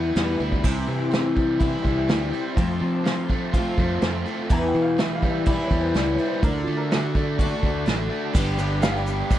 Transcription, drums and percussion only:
0.16 snare medium
0.16 open hi-hat medium
0.41 open hi-hat soft
0.52 kick medium
0.64 kick loud
0.64 crash loud
0.88 open hi-hat soft
1.13 snare loud
1.13 open hi-hat medium
1.37 kick medium
1.37 open hi-hat soft
1.61 kick loud
1.61 open hi-hat medium
1.85 kick medium
1.85 open hi-hat soft
2.09 snare loud
2.09 open hi-hat medium
2.33 open hi-hat medium
2.57 kick loud
2.57 open hi-hat medium
2.82 open hi-hat medium
3.05 snare medium
3.05 open hi-hat medium
3.29 kick medium
3.29 open hi-hat medium
3.54 kick loud
3.54 open hi-hat medium
3.78 kick medium
3.78 open hi-hat medium
4.02 snare loud
4.02 open hi-hat medium
4.26 open hi-hat soft
4.50 kick loud
4.50 open hi-hat medium
4.74 open hi-hat medium
4.98 snare loud
4.98 open hi-hat medium
5.22 kick medium
5.22 open hi-hat medium
5.46 kick loud
5.46 open hi-hat medium
5.71 kick medium
5.71 open hi-hat soft
5.95 snare medium
5.95 open hi-hat medium
6.19 open hi-hat medium
6.43 kick loud
6.43 open hi-hat medium
6.67 open hi-hat medium
6.91 snare loud
6.91 open hi-hat medium
7.15 kick medium
7.15 open hi-hat medium
7.39 kick loud
7.39 open hi-hat medium
7.63 kick medium
7.63 open hi-hat medium
7.87 snare loud
7.87 open hi-hat medium
8.11 open hi-hat soft
8.35 kick loud
8.35 crash loud
8.35 shaker loud
8.58 open hi-hat medium
8.58 shaker medium
8.82 snare loud
8.82 open hi-hat medium
8.82 shaker medium
8.96 snare soft
9.06 open hi-hat medium
9.06 shaker medium
9.30 kick loud
9.30 open hi-hat medium
9.30 shaker medium

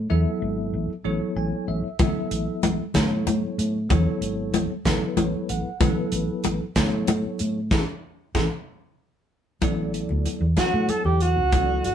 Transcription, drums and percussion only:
1.99 kick loud
1.99 closed hi-hat medium
1.99 muted conga loud
1.99 high conga loud
1.99 low conga loud
2.16 low conga soft
2.31 closed hi-hat medium
2.31 low conga soft
2.63 closed hi-hat medium
2.63 muted conga loud
2.63 high conga loud
2.79 low conga soft
2.94 kick medium
2.94 snare loud
2.94 closed hi-hat medium
2.94 low conga loud
3.27 closed hi-hat medium
3.27 muted conga medium
3.27 high conga loud
3.43 low conga soft
3.59 closed hi-hat medium
3.90 kick loud
3.90 closed hi-hat medium
3.90 muted conga loud
3.90 high conga medium
3.90 low conga medium
4.06 low conga soft
4.22 closed hi-hat medium
4.22 low conga soft
4.54 closed hi-hat medium
4.54 muted conga loud
4.54 high conga medium
4.70 low conga soft
4.85 kick medium
4.85 snare loud
4.85 closed hi-hat medium
4.85 low conga medium
5.17 closed hi-hat medium
5.17 muted conga loud
5.17 high conga loud
5.33 low conga soft
5.49 closed hi-hat medium
5.81 kick loud
5.81 closed hi-hat medium
5.81 muted conga loud
5.81 high conga loud
5.81 low conga loud
5.98 low conga soft
6.12 closed hi-hat medium
6.44 closed hi-hat medium
6.44 muted conga loud
6.44 high conga loud
6.61 low conga soft
6.76 kick medium
6.76 snare loud
6.76 closed hi-hat medium
6.76 low conga loud
7.07 closed hi-hat medium
7.07 muted conga loud
7.07 high conga loud
7.24 low conga soft
7.39 closed hi-hat medium
7.71 kick medium
7.71 snare loud
7.71 muted conga medium
8.35 kick medium
8.35 snare medium
8.35 muted conga loud
9.62 kick loud
9.62 closed hi-hat medium
9.62 muted conga medium
9.62 high conga medium
9.62 low conga soft
9.94 closed hi-hat medium
10.09 low conga medium
10.25 closed hi-hat medium
10.25 high conga medium
10.57 kick medium
10.57 snare loud
10.57 closed hi-hat medium
10.57 muted conga medium
10.89 closed hi-hat medium
10.89 high conga medium
11.05 low conga medium
11.21 closed hi-hat medium
11.52 kick loud
11.52 closed hi-hat medium
11.52 muted conga medium
11.52 high conga medium
11.52 low conga soft
11.84 closed hi-hat medium

